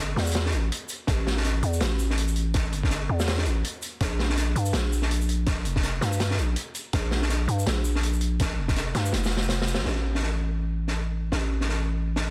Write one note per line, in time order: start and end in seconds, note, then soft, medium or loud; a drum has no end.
0.00 0.16 G1 loud
0.16 0.55 E2 loud
0.16 snare medium
0.16 closed hi-hat soft
0.20 closed hi-hat soft
0.22 closed hi-hat soft
0.25 closed hi-hat soft
0.25 shaker medium
0.27 closed hi-hat soft
0.29 closed hi-hat soft
0.31 closed hi-hat soft
0.31 closed hi-hat loud
0.33 snare loud
0.33 closed hi-hat soft
0.46 snare medium
0.52 0.70 A1 loud
0.52 closed hi-hat medium
0.72 closed hi-hat medium
0.89 closed hi-hat medium
0.89 shaker medium
1.07 1.62 A1 loud
1.07 kick loud
1.07 snare medium
1.07 closed hi-hat medium
1.27 snare medium
1.37 snare medium
1.44 snare soft
1.44 closed hi-hat medium
1.63 1.80 E2 loud
1.63 closed hi-hat medium
1.73 shaker medium
1.81 2.74 A1 medium
1.81 snare loud
1.81 closed hi-hat medium
1.99 shaker medium
2.10 snare soft
2.18 closed hi-hat medium
2.28 shaker medium
2.36 closed hi-hat soft
2.54 kick loud
2.54 snare medium
2.54 closed hi-hat medium
2.73 3.08 G1 loud
2.73 closed hi-hat medium
2.83 kick loud
2.83 snare medium
2.90 snare medium
2.90 closed hi-hat medium
3.09 3.47 E2 loud
3.20 snare medium
3.20 shaker medium
3.28 snare loud
3.28 closed hi-hat medium
3.38 snare medium
3.46 3.63 A1 loud
3.46 closed hi-hat medium
3.65 closed hi-hat medium
3.82 closed hi-hat medium
3.82 shaker medium
4.00 4.55 A#1 loud
4.00 kick loud
4.00 snare medium
4.00 closed hi-hat medium
4.19 snare medium
4.30 snare medium
4.37 snare soft
4.37 closed hi-hat medium
4.56 4.73 G2 loud
4.56 closed hi-hat medium
4.66 shaker medium
4.73 5.66 A#1 medium
4.73 snare loud
4.73 closed hi-hat medium
4.93 shaker medium
5.02 snare soft
5.11 closed hi-hat medium
5.21 shaker soft
5.29 closed hi-hat medium
5.46 kick loud
5.46 snare medium
5.46 closed hi-hat medium
5.65 6.01 F1 loud
5.65 closed hi-hat medium
5.76 kick loud
5.76 snare medium
5.83 snare soft
5.83 closed hi-hat medium
6.01 6.40 G2 loud
6.01 snare medium
6.01 closed hi-hat medium
6.13 shaker medium
6.20 snare loud
6.20 closed hi-hat medium
6.30 snare medium
6.38 6.56 A#1 medium
6.38 closed hi-hat medium
6.56 closed hi-hat medium
6.75 closed hi-hat medium
6.75 shaker medium
6.93 7.47 A#1 loud
6.93 kick loud
6.93 snare medium
6.93 closed hi-hat medium
7.11 snare medium
7.22 snare medium
7.29 snare medium
7.29 closed hi-hat medium
7.48 7.65 G2 loud
7.48 closed hi-hat medium
7.59 shaker medium
7.66 8.59 A#1 medium
7.66 snare loud
7.66 closed hi-hat loud
7.85 shaker medium
7.95 snare soft
8.03 closed hi-hat medium
8.13 shaker medium
8.21 closed hi-hat medium
8.40 kick loud
8.40 snare medium
8.40 closed hi-hat medium
8.58 8.94 F1 loud
8.68 kick loud
8.68 snare medium
8.68 closed hi-hat medium
8.76 snare medium
8.76 closed hi-hat medium
8.95 9.14 G2 loud
8.95 snare medium
8.95 closed hi-hat medium
9.05 shaker medium
9.13 9.80 F1 loud
9.13 snare medium
9.13 closed hi-hat medium
9.24 snare medium
9.24 shaker medium
9.32 closed hi-hat medium
9.37 snare medium
9.42 shaker medium
9.49 snare medium
9.49 closed hi-hat medium
9.61 snare medium
9.68 closed hi-hat medium
9.68 shaker medium
9.74 snare loud
9.79 9.86 A#1 medium
9.85 11.31 A1 medium
9.85 snare medium
10.15 snare soft
10.23 snare soft
10.88 snare soft
11.32 12.30 A1 medium
11.32 snare medium
11.61 snare soft
11.69 snare medium
12.16 snare medium